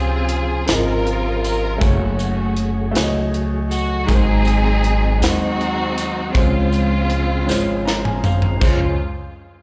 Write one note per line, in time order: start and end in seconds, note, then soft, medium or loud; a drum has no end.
0.00 0.65 C#2 medium
0.00 0.48 C3 medium
0.00 0.64 C#3 medium
0.00 1.80 F3 medium
0.00 0.66 C4 medium
0.00 1.79 C4 medium
0.00 0.49 F4 medium
0.00 0.66 F4 medium
0.00 0.50 G#4 medium
0.00 0.70 G#4 medium
0.00 8.57 G#4 medium
0.00 0.50 C5 medium
0.29 closed hi-hat medium
0.66 1.78 G#1 medium
0.66 1.62 C4 medium
0.66 1.62 F4 medium
0.66 1.63 G#4 medium
0.66 snare medium
0.66 closed hi-hat medium
0.66 tambourine medium
0.70 1.79 F4 medium
0.70 1.43 A#4 medium
0.70 1.64 D#5 medium
1.07 closed hi-hat soft
1.44 1.80 A#4 medium
1.44 closed hi-hat medium
1.44 tambourine medium
1.78 2.91 F#1 loud
1.78 4.06 F#3 medium
1.78 2.74 A3 medium
1.78 4.06 A3 medium
1.78 2.75 F#4 medium
1.78 2.76 G#4 medium
1.78 2.76 C#5 medium
1.78 kick loud
1.78 closed hi-hat medium
1.78 tambourine soft
1.83 2.92 A3 soft
1.83 2.92 C#4 soft
1.83 2.96 F#4 medium
2.19 closed hi-hat soft
2.19 tambourine medium
2.57 closed hi-hat medium
2.91 4.04 C#2 medium
2.91 3.87 A3 medium
2.91 3.88 F#4 medium
2.91 3.89 G#4 medium
2.95 3.02 C#5 medium
2.95 snare medium
2.95 closed hi-hat medium
2.95 tambourine medium
3.03 3.93 D#5 medium
3.34 closed hi-hat soft
3.71 4.06 F#4 medium
3.71 closed hi-hat medium
3.71 tambourine medium
4.05 5.17 G#2 medium
4.05 5.01 G#3 medium
4.05 8.57 C4 medium
4.05 5.01 D#4 medium
4.05 5.02 F#4 medium
4.05 4.15 A#4 medium
4.05 kick medium
4.05 tambourine medium
4.09 5.18 G#1 loud
4.09 6.32 F#3 medium
4.09 5.18 C4 medium
4.09 6.32 D#4 medium
4.09 5.18 D#4 medium
4.09 5.22 G#4 loud
4.09 closed hi-hat medium
4.15 5.06 C5 medium
4.45 closed hi-hat medium
4.45 tambourine soft
4.84 closed hi-hat medium
5.19 6.30 D#2 medium
5.19 6.14 G#3 medium
5.19 6.15 D#4 medium
5.19 6.15 F#4 medium
5.19 6.31 F#4 loud
5.19 tambourine medium
5.23 6.32 C4 medium
5.23 6.32 D#4 medium
5.23 6.16 C5 medium
5.23 snare medium
5.23 closed hi-hat loud
5.61 closed hi-hat soft
5.98 closed hi-hat medium
5.98 tambourine medium
6.32 7.44 C#2 loud
6.32 7.43 C#3 medium
6.32 8.59 C#3 medium
6.32 8.58 F3 medium
6.32 7.28 G#3 medium
6.32 8.20 G#3 medium
6.32 7.28 C4 medium
6.32 8.23 F4 medium
6.32 7.29 F4 medium
6.32 kick loud
6.32 closed hi-hat medium
6.32 tambourine medium
6.37 8.20 C4 medium
6.37 7.30 C5 medium
6.72 closed hi-hat medium
6.72 tambourine soft
7.10 closed hi-hat medium
7.45 8.57 G#1 medium
7.45 8.41 C#3 medium
7.45 8.41 G#3 medium
7.45 8.42 F4 medium
7.45 8.42 C5 medium
7.45 tambourine medium
7.50 snare soft
7.85 8.03 A#5 medium
7.85 snare medium
8.05 8.22 G#5 medium
8.05 mid tom medium
8.24 8.59 F5 medium
8.24 floor tom medium
8.24 tambourine medium
8.42 floor tom medium
8.60 8.96 C#2 medium
8.60 8.96 F3 medium
8.60 8.96 G#3 medium
8.60 8.96 C#4 medium
8.60 8.96 F4 medium
8.60 8.97 F4 medium
8.60 8.96 G#4 medium
8.60 8.95 C5 medium
8.60 8.96 C5 medium
8.60 kick loud
8.60 crash medium
8.60 tambourine medium